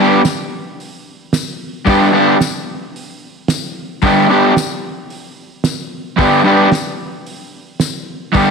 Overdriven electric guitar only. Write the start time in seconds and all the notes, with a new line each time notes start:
Already playing: G2
0.00 D3 G3 B3 D4 G4
1.85 G2 D3 G3 B3 D4
1.89 G4
2.12 G2 D3 G3 B3 D4
2.16 G4
4.02 G2 D3 G3 B3 D4 G4
4.28 G2 D3 G3 B3 D4
4.33 G4
6.18 G2 D3 G3 B3 D4 G4
6.44 G2 D3 G3 B3 D4
6.48 G4
8.33 G2 D3 G3 B3 D4
8.37 G4